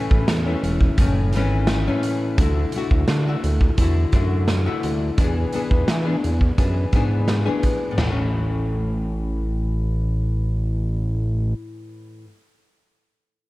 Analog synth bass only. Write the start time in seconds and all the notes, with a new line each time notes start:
0.11 A1
0.28 E2
0.63 E1
0.98 F#1
1.34 G#1
2.38 D2
2.91 D2
3.08 D3
3.44 D2
3.78 E2
4.13 F#2
4.84 D2
5.18 E2
5.71 E2
5.89 E3
6.24 E2
6.58 F#2
6.93 G#2
7.99 A1